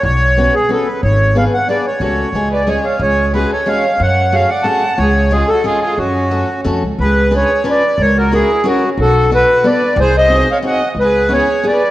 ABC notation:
X:1
M:3/4
L:1/16
Q:1/4=181
K:C#phr
V:1 name="Accordion"
c6 G2 A2 B2 | c4 ^e2 f2 d2 c2 | c6 d2 c2 ^e2 | c4 B2 c2 ^e4 |
f4 ^e2 f2 a4 | c4 G2 A2 G2 G2 | F8 z4 | B4 c4 d4 |
c2 ^A2 G4 F3 z | A4 B4 d4 | ^B2 ^d4 ^e2 f3 z | B4 c4 d4 |]
V:2 name="Violin"
z12 | z12 | z6 B2 G2 c2 | G4 G2 A2 c4 |
c4 c2 d2 f4 | G4 ^E2 F2 E2 E2 | C8 z4 | G4 G4 B4 |
^A2 F2 E4 C3 z | F4 F4 B4 | G2 ^B4 c2 ^d3 z | G4 G4 B4 |]
V:3 name="Steel-string acoustic guitar"
z4 [B,CFB]2 z2 [B,CFB]2 z2 | z4 [B,DGB]2 z2 [B,DGB]2 z2 | [A,CFA]4 [G,C^EG]2 z2 [G,CEG]2 z2 | z4 [G,CFG]2 z2 [G,CFG]2 z2 |
z4 [A,CFG]2 z2 [A,CFG]2 z2 | z4 [G,C^EG]2 z2 [G,CEG]2 z2 | z4 [A,CFA]2 z2 [A,CFA]2 z2 | z4 [CD^EB]2 z2 [CDEB]2 z2 |
z4 [CEF^A]2 z2 [CEFA]2 z2 | z4 [B,DFA]2 z2 [B,DFA]2 z2 | z4 [^B,^DFG]2 z2 [B,DFG]2 z2 | z4 [B,CEG]2 z2 [B,CEG]2 z2 |]
V:4 name="Upright bass" clef=bass
B,,,8 z4 | G,,,8 z4 | C,,4 C,,8 | C,,8 z4 |
F,,8 z4 | C,,8 z4 | F,,8 ^E,,2 C,,2 | C,,8 z4 |
C,,8 z4 | B,,,8 z4 | ^B,,,8 z4 | C,,8 z4 |]